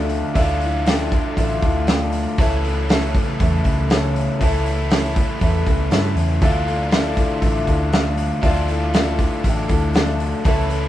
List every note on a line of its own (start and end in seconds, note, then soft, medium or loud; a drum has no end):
0.00 0.21 D2 medium
0.00 0.33 D3 medium
0.00 0.35 D3 medium
0.00 0.35 F3 medium
0.00 0.36 A3 medium
0.00 0.37 A3 loud
0.00 0.34 D4 medium
0.00 0.25 F4 medium
0.00 0.34 F4 medium
0.00 0.37 A4 medium
0.00 0.25 D5 medium
0.00 0.26 E5 medium
0.09 open hi-hat medium
0.34 1.18 D2 loud
0.34 0.61 D3 medium
0.34 0.61 F3 loud
0.34 0.62 A3 medium
0.34 2.37 D4 medium
0.34 0.76 F4 loud
0.34 0.76 D5 loud
0.34 0.77 E5 loud
0.34 kick loud
0.34 open hi-hat medium
0.38 0.62 E4 loud
0.38 2.38 F4 medium
0.38 0.60 A4 loud
0.61 0.85 A3 medium
0.61 0.86 E4 soft
0.61 0.86 A4 medium
0.61 open hi-hat medium
0.85 1.11 D3 medium
0.85 1.11 F3 loud
0.85 1.11 A3 loud
0.85 1.12 E4 loud
0.85 1.27 F4 medium
0.85 1.10 A4 loud
0.85 1.27 D5 medium
0.85 1.27 G5 loud
0.85 snare loud
0.85 open hi-hat medium
1.11 1.36 A3 soft
1.11 1.37 E4 soft
1.11 1.36 A4 medium
1.11 kick medium
1.11 open hi-hat soft
1.37 1.57 A1 medium
1.37 1.62 F3 medium
1.37 1.62 A3 medium
1.37 1.63 E4 medium
1.37 1.78 F4 medium
1.37 1.63 A4 medium
1.37 1.79 D5 medium
1.37 1.79 E5 loud
1.37 kick medium
1.37 open hi-hat medium
1.62 2.25 D2 medium
1.62 1.89 E4 medium
1.62 1.88 A4 medium
1.62 kick medium
1.62 open hi-hat medium
1.67 1.88 A3 soft
1.87 2.39 D3 medium
1.87 2.39 F3 medium
1.87 2.40 A3 medium
1.87 2.29 F4 medium
1.87 2.41 A4 medium
1.87 2.30 D5 medium
1.87 2.30 G5 medium
1.87 snare loud
1.87 open hi-hat medium
2.12 open hi-hat medium
2.38 3.21 C#2 loud
2.38 2.64 C#3 medium
2.38 2.65 E3 medium
2.38 2.65 A3 medium
2.38 2.65 C#4 loud
2.38 4.43 E4 medium
2.38 2.79 A4 loud
2.38 2.64 A4 loud
2.38 2.79 C#5 medium
2.38 2.80 E5 loud
2.38 kick loud
2.38 open hi-hat medium
2.64 2.90 A3 soft
2.64 2.90 C#4 medium
2.64 2.90 A4 medium
2.64 open hi-hat soft
2.89 3.15 C#3 medium
2.89 3.15 E3 medium
2.89 3.15 A3 loud
2.89 3.15 C#4 loud
2.89 3.30 A4 medium
2.89 3.15 A4 loud
2.89 3.31 C#5 medium
2.89 3.31 E5 medium
2.89 snare loud
2.89 open hi-hat medium
3.15 3.39 A3 soft
3.15 3.40 C#4 soft
3.15 3.40 A4 medium
3.15 kick medium
3.15 open hi-hat medium
3.40 3.60 E2 medium
3.40 3.65 E3 medium
3.40 3.65 A3 medium
3.40 3.64 C#4 medium
3.40 3.81 A4 medium
3.40 3.63 A4 medium
3.40 3.81 C#5 medium
3.40 3.81 E5 medium
3.40 kick medium
3.40 open hi-hat medium
3.64 4.27 C#2 medium
3.64 3.91 A3 soft
3.64 3.90 C#4 medium
3.64 3.89 A4 medium
3.64 kick medium
3.64 open hi-hat medium
3.90 4.40 C#3 medium
3.90 4.41 E3 medium
3.90 4.41 A3 medium
3.90 4.41 C#4 loud
3.90 4.32 A4 medium
3.90 4.43 A4 medium
3.90 4.32 C#5 medium
3.90 4.33 E5 medium
3.90 snare loud
3.90 open hi-hat medium
4.16 open hi-hat medium
4.40 5.23 C#2 medium
4.40 4.66 C#3 medium
4.40 4.66 E3 medium
4.40 4.66 A3 medium
4.40 4.66 C#4 loud
4.40 6.44 E4 loud
4.40 4.82 A4 loud
4.40 4.65 A4 medium
4.40 4.83 C#5 loud
4.40 4.83 E5 loud
4.40 kick medium
4.40 open hi-hat medium
4.66 4.91 A3 soft
4.66 4.91 C#4 medium
4.66 4.91 A4 medium
4.66 open hi-hat medium
4.89 5.16 C#3 loud
4.89 5.16 E3 medium
4.89 5.15 A3 medium
4.89 5.15 C#4 loud
4.89 5.31 A4 medium
4.89 5.13 A4 loud
4.89 5.32 C#5 medium
4.89 5.32 E5 loud
4.89 snare loud
4.89 open hi-hat medium
5.14 5.38 A3 soft
5.14 5.39 C#4 medium
5.14 5.40 A4 soft
5.14 kick medium
5.14 open hi-hat medium
5.39 5.62 E2 medium
5.39 5.65 E3 medium
5.39 5.66 A3 medium
5.39 5.66 C#4 medium
5.39 5.82 A4 medium
5.39 5.65 A4 medium
5.39 5.83 C#5 medium
5.39 5.83 E5 medium
5.39 kick medium
5.39 open hi-hat medium
5.66 5.87 C#2 medium
5.66 5.91 A3 soft
5.66 5.91 C#4 medium
5.66 5.92 A4 soft
5.66 kick medium
5.66 open hi-hat soft
5.90 6.14 G2 medium
5.90 6.41 C#3 medium
5.90 6.42 E3 loud
5.90 6.42 A3 medium
5.90 6.43 C#4 medium
5.90 6.32 A4 medium
5.90 6.43 A4 loud
5.90 6.33 C#5 medium
5.90 6.33 E5 loud
5.90 snare medium
5.90 open hi-hat medium
6.16 6.39 E2 medium
6.16 open hi-hat medium
6.41 7.25 D2 medium
6.41 6.67 D3 medium
6.41 6.67 F3 medium
6.41 6.67 A3 medium
6.41 8.42 D4 medium
6.41 6.67 E4 loud
6.41 6.83 F4 medium
6.41 8.43 F4 medium
6.41 6.66 A4 loud
6.41 6.84 D5 medium
6.41 6.84 E5 loud
6.41 kick loud
6.41 open hi-hat medium
6.67 6.92 A3 soft
6.67 6.93 E4 medium
6.67 6.93 A4 medium
6.67 open hi-hat soft
6.91 7.17 D3 medium
6.91 7.18 F3 loud
6.91 7.17 A3 medium
6.91 7.17 E4 medium
6.91 7.33 F4 medium
6.91 7.15 A4 loud
6.91 7.33 D5 medium
6.91 7.34 E5 medium
6.91 snare loud
6.91 open hi-hat medium
7.16 7.42 A3 soft
7.16 7.43 E4 medium
7.16 7.42 A4 medium
7.16 kick medium
7.16 open hi-hat medium
7.42 7.63 A1 medium
7.42 7.68 F3 medium
7.42 7.68 A3 medium
7.42 7.69 E4 medium
7.42 7.84 F4 medium
7.42 7.68 A4 medium
7.42 7.84 D5 medium
7.42 7.84 E5 medium
7.42 kick medium
7.42 open hi-hat medium
7.67 8.30 D2 medium
7.67 7.94 E4 soft
7.67 7.94 A4 medium
7.67 kick medium
7.67 open hi-hat soft
7.71 7.94 A3 soft
7.91 8.42 D3 medium
7.91 8.34 F4 medium
7.91 8.34 D5 medium
7.91 8.34 E5 loud
7.91 snare loud
7.91 open hi-hat medium
7.95 8.44 F3 medium
7.95 8.44 A3 medium
7.95 8.46 A4 loud
8.17 open hi-hat medium
8.42 9.26 D2 medium
8.42 8.69 D3 medium
8.42 8.70 F3 loud
8.42 8.70 A3 medium
8.42 10.44 D4 medium
8.42 8.70 E4 medium
8.42 8.84 F4 loud
8.42 10.44 F4 loud
8.42 8.84 D5 medium
8.42 8.85 E5 loud
8.42 kick loud
8.42 open hi-hat medium
8.46 8.68 A4 loud
8.68 8.94 A3 soft
8.68 8.94 E4 medium
8.68 8.95 A4 medium
8.68 open hi-hat medium
8.94 9.19 D3 medium
8.94 9.20 F3 medium
8.94 9.20 A3 loud
8.94 9.19 E4 medium
8.94 9.36 F4 medium
8.94 9.18 A4 loud
8.94 9.36 D5 medium
8.94 9.36 E5 loud
8.94 snare loud
8.94 open hi-hat medium
9.19 9.42 A3 soft
9.19 9.44 E4 medium
9.19 9.45 A4 medium
9.19 9.44 F5 medium
9.19 kick medium
9.19 open hi-hat medium
9.43 9.65 A1 medium
9.43 9.69 F3 medium
9.43 9.70 A3 medium
9.43 9.68 E4 medium
9.43 9.86 F4 medium
9.43 9.67 A4 medium
9.43 9.87 D5 medium
9.43 9.87 E5 loud
9.43 9.69 G5 medium
9.43 kick medium
9.43 open hi-hat medium
9.68 10.32 D2 medium
9.68 9.93 A3 soft
9.68 9.95 E4 medium
9.68 9.94 A4 medium
9.68 9.94 A5 medium
9.68 kick medium
9.68 open hi-hat medium
9.93 10.44 D3 medium
9.93 10.44 F3 medium
9.93 10.44 A3 medium
9.93 10.37 F4 medium
9.93 10.46 A4 medium
9.93 10.37 D5 medium
9.93 10.43 A5 medium
9.93 snare loud
9.93 open hi-hat medium
9.97 10.38 E5 medium
10.20 open hi-hat medium
10.44 10.88 C#2 medium
10.44 10.70 C#3 medium
10.44 10.71 E3 medium
10.44 10.70 A3 medium
10.44 10.70 C#4 loud
10.44 10.88 E4 medium
10.44 10.87 A4 loud
10.44 10.69 A4 loud
10.44 10.87 C#5 loud
10.44 10.88 E5 loud
10.44 kick loud
10.44 open hi-hat medium
10.70 10.88 A3 soft
10.70 10.88 C#4 soft
10.70 10.88 A4 medium
10.70 open hi-hat medium